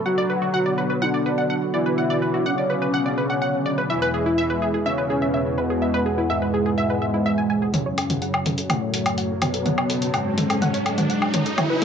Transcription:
Already playing: A4 E5 B5 C#6
0.06 B2 D3 F#3 B3 F#4 F#5
0.18 D5
0.30 B4
0.36 F#4
0.42 F#4
0.54 F#5
0.66 D5
0.78 B4
0.90 B4
1.02 D4 F#5
1.14 D5
1.26 B4
1.38 F#5
1.50 F#5
1.60 D6
1.74 E4 D5
1.86 B4
1.98 F#5
2.10 D5
2.22 B4
2.34 F#4
2.46 C#4 F#5
2.58 D5
2.70 B4
2.82 B4
2.94 F#5
3.06 D5
3.18 B4
3.30 F#5
3.42 F#5
3.66 D5
3.78 B4
3.90 E2 G#3 E4 E5
4.02 B4
4.14 G#4
4.24 E4 B4
4.38 E5
4.50 B4
4.62 G#4
4.74 G#4
4.86 C#4 E5 F#5
4.98 B4
5.10 G#4
5.22 E5
5.34 E5
5.39 G#5
5.58 B3 B4
5.70 G#4
5.82 E5
5.94 B4
6.06 G#4
6.18 E4
6.30 G#3 E5
6.42 B4
6.54 G#4
6.66 G#4
6.78 E5
6.90 B4
7.02 E5
7.14 E4
7.26 E5
7.38 G#5
7.50 G#5
7.62 G#4
7.74 F#2 C#3 F#3 C#4 F#4 F#5, closed hi-hat, mid tom, riser
7.86 C#5
7.98 A4, open hi-hat, low woodblock
8.10 F#4 C#5, closed hi-hat, mid tom
8.22 F#5, closed hi-hat
8.34 C#5, low woodblock
8.46 A4, open hi-hat, mid tom
8.58 A4, closed hi-hat
8.70 A3 F#5, closed hi-hat, mid tom, low woodblock
8.82 C#5
8.94 A4, open hi-hat
9.06 F#5, closed hi-hat, low woodblock
9.13 A5
9.18 F#5, open hi-hat
9.42 B3 C#5, open hi-hat, mid tom, low woodblock
9.54 A4, closed hi-hat
9.66 F#5, closed hi-hat, mid tom
9.78 C#5, low woodblock
9.90 A4, open hi-hat
10.02 F#4, closed hi-hat
10.14 G#3 F#5, closed hi-hat, low woodblock
10.26 C#5
10.38 A4, open hi-hat, mid tom
10.50 A4, closed hi-hat, low woodblock
10.62 F#5, closed hi-hat, mid tom
10.74 C#5, open hi-hat
10.86 A4, open hi-hat, low woodblock
10.98 F#5, closed hi-hat, mid tom
11.10 F#5, closed hi-hat
11.22 low woodblock
11.34 C#5, open hi-hat, mid tom
11.46 A4, closed hi-hat
11.58 B3 E4 A4 C#5, closed hi-hat, mid tom, low woodblock
11.70 B4

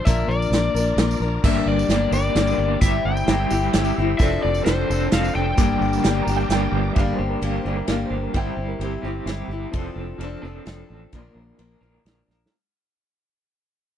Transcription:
0.05 A#1 A#2 D3 F3 A#3 D4 F4 A#4 D5 E5, kick, closed hi-hat, tambourine
0.28 A#1 D5, tambourine
0.42 tambourine
0.50 A#1 F3 A#3 D4 A#4, snare, closed hi-hat
0.55 tambourine
0.74 A#1 F3 A#3 D4 A#4, tambourine
0.97 A#1 F3 A#3 D4 A#4, snare, closed hi-hat
1.11 tambourine
1.20 A#1 A#3 D4 A#4
1.24 F3
1.43 G1 G2 D3 G3 A#3 D4 G4 A#4 D5 E5, kick, crash, tambourine
1.66 G1 D5
1.79 tambourine
1.89 G1 G3 A#3 D4 G4, snare, closed hi-hat
2.11 G1 G3 A#3 D4 G4 D5, tambourine
2.35 G1 G2 D3 G3 A#3 D4 G4, snare, closed hi-hat
2.47 tambourine
2.58 G1 G3 A#3 D4 G4
2.79 G1 G3 C4 E4 G4 C5 E5, kick, closed hi-hat, tambourine
3.05 G1 G5
3.17 tambourine
3.27 G1 G3 C4 E4 G4, snare, closed hi-hat, tambourine
3.50 G1 C4 E4 G4, tambourine
3.73 G1 G3 C4 E4 G4, snare, closed hi-hat
3.85 tambourine
3.95 G1 C4 E4 G4
4.18 F1 F3 C4 D4 F4 A4 C5 D5 E5, kick, closed hi-hat, tambourine
4.43 F1 D5
4.54 tambourine
4.64 F1 F3 C4 D4 A4 C5, snare, closed hi-hat
4.88 F1 C4 D4 A4, tambourine
5.11 F1 F3 C4 D4 A4 F5, snare, closed hi-hat
5.24 tambourine
5.33 F1 C4 D4 A4 G5
5.56 G1 G2 D3 G3 A#3 D4 G4 A#4 D5, kick, closed hi-hat, tambourine
5.81 G1, tambourine
5.93 tambourine
6.03 G1 G3 A#3 D4 G4 G5, snare, closed hi-hat
6.22 D4 G4 A#5
6.26 G1 G3 A#3 D4, tambourine
6.31 G3 A#3
6.37 G5, tambourine
6.49 G1 G2 D3 G3 A#3 D4 G4 G5, snare, closed hi-hat
6.53 A#3 D4 G4
6.72 G1 G3 A#3 D4 G4
6.93 G1 G2 D3 G3 A#3 D4 G4 E5, kick, ride
6.98 G3 F5
7.13 C5
7.19 G1 G3 A#3 D4 G4
7.29 A#4
7.42 G1 G3 A#3 D4 G4 F5, ride
7.59 C5
7.64 G1 G2 D3 G3 A#3 D4 G4
7.75 A#4
7.86 G1 G3 A#3 D4 G4 E5, snare, ride
7.90 F5
8.05 C5
8.10 G1 G3 A#3 D4 G4
8.22 A#4
8.33 G1 G3 C4 E4 G4 F#5, kick, ride
8.37 G5
8.50 C5
8.56 G1 C4 E4 G4
8.68 A#4
8.79 G1 G3 C4 E4 G4, ride
9.02 G1 G3 C4 E4 G4
9.07 C4
9.26 G1 G3 C4 E4 G4, snare, ride
9.48 G1 C4 E4 G4
9.70 F1 F3 C4 D4 A4, kick, ride
9.95 F1 C4 D4 A4
10.18 F1 F3 C4 D4 A4, ride
10.42 F1 F3 C4 D4 A4
10.47 C4
10.65 F1 F3 C4 D4 A4, snare, ride
10.89 A1 C4 D4 A4
11.12 A#1 A#2 D3 F3 A#3 D4 A#4, kick, ride
11.34 A#1 F3 A#3 D4 A#4
11.58 A#1 F3 A#3 D4 A#4, ride
11.81 A#1 A#2 D3 F3 A#3 D4 A#4
12.05 A#1 F3 A#3 D4 A#4, snare, ride
12.28 A#1 F3 A#3 D4 A#4, snare
12.46 snare

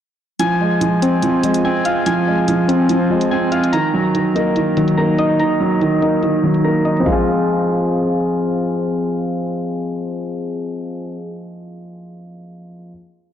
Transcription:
0.39 F3 G#5, closed hi-hat
0.60 G#3
0.81 F3, closed hi-hat
1.02 C4, closed hi-hat
1.22 F3, closed hi-hat
1.43 F3 G#3, closed hi-hat
1.54 closed hi-hat
1.65 C4 G#5
1.85 F4 F5, closed hi-hat
2.06 F3 G#5, closed hi-hat
2.27 G#3
2.48 F3, closed hi-hat
2.68 C4, closed hi-hat
2.89 F3, closed hi-hat
3.10 F3 G#3
3.21 closed hi-hat
3.31 C4 G#5
3.52 F4 F5, closed hi-hat
3.64 closed hi-hat
3.73 D#3 A#5, closed hi-hat
3.94 F#3
4.15 D#3, closed hi-hat
4.35 A#3 D#4, closed hi-hat
4.56 D#3, closed hi-hat
4.77 D#3 F#3, closed hi-hat
4.88 closed hi-hat
4.98 A#3 A#5
5.19 D#4 D#5, closed hi-hat
5.40 D#3 A#5, closed hi-hat
5.60 F#3
5.81 D#3, closed hi-hat
6.02 A#3 D#4, closed hi-hat
6.23 D#3, closed hi-hat
6.44 D#3 F#3
6.54 closed hi-hat
6.64 A#3 A#5
6.85 D#4 D#5, closed hi-hat
6.97 F3 C4, closed hi-hat
7.04 G#3 F4, kick, snare, open hi-hat
7.08 C4
7.12 F4 G#4

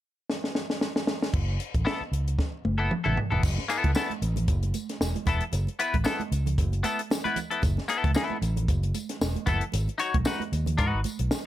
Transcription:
0.30 snare
0.44 snare
0.55 snare
0.70 snare
0.81 snare
0.96 snare
1.07 snare
1.22 snare
1.34 F#1, kick, crash
1.60 closed hi-hat
1.74 A1, kick, closed hi-hat
1.85 B3 E4 A4, snare
2.01 muted fingered electric bass stroke
2.12 C#2, closed hi-hat
2.28 closed hi-hat
2.39 kick, snare
2.65 F#1, high tom
2.78 B3 E4 A4
2.91 muted fingered electric bass stroke, mid tom
3.04 A1 B3 E4 A4, mid tom
3.17 floor tom
3.30 E1 B3 E4 A4, floor tom
3.43 F#1, kick, crash, tambourine
3.58 snare, muted conga
3.68 B3 E4 A4, closed hi-hat, tambourine
3.84 C#2, kick, closed hi-hat, high conga
3.95 B3 E4 A4, snare, tambourine, muted conga
4.10 closed hi-hat, high conga
4.22 A1, closed hi-hat, tambourine
4.36 closed hi-hat, low conga
4.48 F#1, kick, closed hi-hat, tambourine, muted conga
4.63 closed hi-hat, muted conga
4.74 closed hi-hat, tambourine, high conga
4.89 snare, closed hi-hat
5.00 E1, snare, tambourine
5.16 closed hi-hat, muted conga, high conga
5.26 E1 B3 E4 A4, kick, closed hi-hat, tambourine, low conga
5.41 closed hi-hat
5.52 F#1, closed hi-hat, tambourine, muted conga
5.67 closed hi-hat, muted conga
5.79 B3 E4 B4, closed hi-hat, tambourine
5.94 A1, kick, closed hi-hat, high conga
6.04 B3 E4 A4, snare, tambourine, muted conga
6.20 closed hi-hat, muted conga, high conga
6.32 C#2, closed hi-hat, tambourine
6.46 closed hi-hat, low conga
6.58 F#1, kick, closed hi-hat, tambourine
6.72 closed hi-hat, muted conga
6.83 B3 E4 A4, closed hi-hat, tambourine, high conga
6.99 closed hi-hat
7.10 snare, tambourine, muted conga
7.24 B3 E4 B4, closed hi-hat, muted conga, high conga
7.36 closed hi-hat, tambourine, low conga
7.51 B3 E4 A4, closed hi-hat
7.62 F#1, kick, closed hi-hat, tambourine, muted conga
7.77 snare, muted conga
7.88 B3 E4 A4, closed hi-hat, tambourine
8.04 C#2, kick, closed hi-hat, high conga
8.14 B3 E4 A4, snare, tambourine, muted conga
8.30 high conga
8.42 A1, closed hi-hat, tambourine
8.56 closed hi-hat, low conga
8.68 F#1, kick, closed hi-hat, tambourine
8.83 closed hi-hat, muted conga
8.94 closed hi-hat, tambourine, high conga
9.09 snare, closed hi-hat
9.21 E1, snare, tambourine
9.36 closed hi-hat, muted conga, high conga
9.46 F#1 B3 E4 A4, kick, closed hi-hat, tambourine, low conga
9.61 closed hi-hat
9.72 G#1, closed hi-hat, tambourine, muted conga
9.88 closed hi-hat, muted conga
9.98 D#4 F#4 C#5, closed hi-hat, tambourine
10.14 B1, kick, closed hi-hat, high conga
10.25 D#4 F#4 B4, snare, tambourine
10.40 closed hi-hat, muted conga, high conga
10.52 D#2, closed hi-hat, tambourine
10.66 closed hi-hat, low conga
10.78 G#2 D#4 F#4 B4, kick, closed hi-hat, tambourine, muted conga
10.93 G#1
11.04 closed hi-hat, tambourine, high conga
11.19 B1, closed hi-hat
11.31 snare, tambourine

